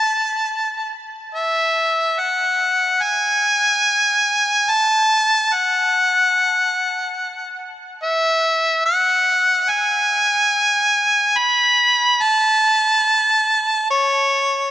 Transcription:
harmonica
Already playing: A5
1.35 E5
2.19 F#5
3.02 G#5
4.70 A5
5.53 F#5
8.03 E5
8.85 F#5
9.70 G#5
11.37 B5
12.22 A5
13.90 C#5

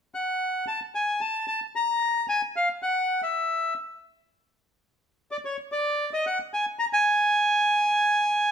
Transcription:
bandoneon
0.14 F#5
0.67 A5
0.95 G#5
1.21 A5
1.48 A5
1.75 A#5
2.29 G#5
2.56 F5
2.83 F#5
3.23 E5
5.31 D5
5.45 C#5
5.72 D5
6.13 D#5
6.26 F#5
6.54 G#5
6.79 A#5
6.93 G#5

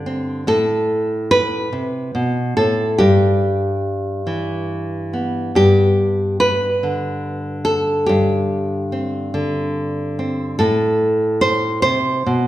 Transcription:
nylon-string guitar
Already playing: G2 D3 G4
0.06 C4
0.47 A2 A4
1.31 B4
1.73 C3
2.15 B2
2.57 A2 A4
2.98 G2 G4
4.27 E3
5.13 B3
5.55 G2 G4
6.40 B4
6.83 D3
7.65 A4
8.06 G2 G4
8.92 C4
9.34 D3
10.19 C4
10.59 A2 A4
11.41 C5
11.82 C3 C5
12.26 B2

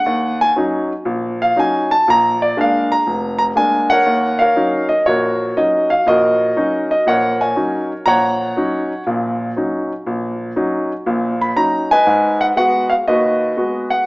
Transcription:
grand piano
Already playing: F#5
0.06 D#2
0.41 G#5
0.56 F#3 C#4 D#4
1.05 A#1
1.42 F5
1.56 F#3 C#4 D#4 G#5
1.91 A5
2.08 A#1 A#5
2.42 D5
2.57 G#3 A#3 D4 F5
2.92 A#5
3.07 F1
3.39 A#5
3.56 G#3 A#3 D4 G#5
3.90 A#4 C#5 F#5
4.06 D#2
4.39 A#4 C#5 F5
4.56 F#3 C#4 D#4
4.89 D#5
5.06 A#1 F#4 A#4 C#5
5.57 F#3 C#4 D#4 D#5
5.90 F5
6.06 A#1 F#4 A#4 D#5
6.56 F#3 C#4 D#4
6.91 D#5
7.06 A#1 A#4 C#5 F#5
7.41 C#5 G#5
7.56 F#3 C#4 D#4
8.06 A#1 C#5 F#5 A#5
8.57 F#3 C#4 D#4
9.06 A#1 A#2
9.56 F#3 C#4 D#4
10.06 A#1
10.56 F#3 C#4 D#4
11.06 A#1 A#2
11.41 B5
11.56 F#3 C#4 D#4 A#5
11.91 B4 D#5 G#5
12.07 G#2
12.41 F#5
12.56 G#3 B3 F#4 F#5
12.90 F5
13.08 D#2 F#4 B4 D#5
13.57 G#3 B3 F#4
13.90 F#5

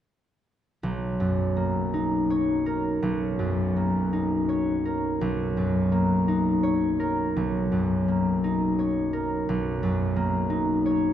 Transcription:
harp
0.83 B1
1.20 F#2
1.57 A#3
1.94 D#4
2.30 C#5
2.66 A#4
3.02 B1
3.39 F#2
3.76 A#3
4.13 D#4
4.49 C#5
4.85 A#4
5.21 B1
5.57 F#2
5.92 A#3
6.28 D#4
6.63 C#5
7.00 A#4
7.36 B1
7.72 F#2
8.08 A#3
8.44 D#4
8.79 C#5
9.13 A#4
9.49 B1
9.83 F#2
10.16 A#3
10.50 D#4
10.86 C#5

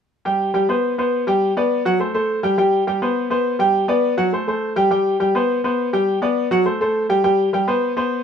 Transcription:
upright piano
0.25 G3 G4 G5
0.54 G3 G4 G5
0.69 B3 B4 C5
0.98 B3 B4 C5
1.27 G3 G4 G5
1.57 B3 B4 D5
1.85 F#3 F#4 F#5
2.00 A3 A4 C5
2.14 A3 A4 C5
2.43 G3 G4 G5
2.58 G3 G4 G5
2.87 G3 G4 G5
3.02 B3 B4 C5
3.30 B3 B4 C5
3.59 G3 G4 G5
3.88 B3 B4 D5
4.17 F#3 F#4 F#5
4.33 A3 A4 C5
4.48 A3 A4 C5
4.76 G3 G4 G5
4.91 G3 G4 G5
5.20 G3 G4 G5
5.35 B3 B4 C5
5.64 B3 B4 C5
5.93 G3 G4 G5
6.22 B3 B4 D5
6.51 F#3 F#4 F#5
6.65 A3 A4 C5
6.81 A3 A4 C5
7.09 G3 G4 G5
7.24 G3 G4 G5
7.53 G3 G4 G5
7.67 B3 B4 C5
7.97 B3 B4 C5

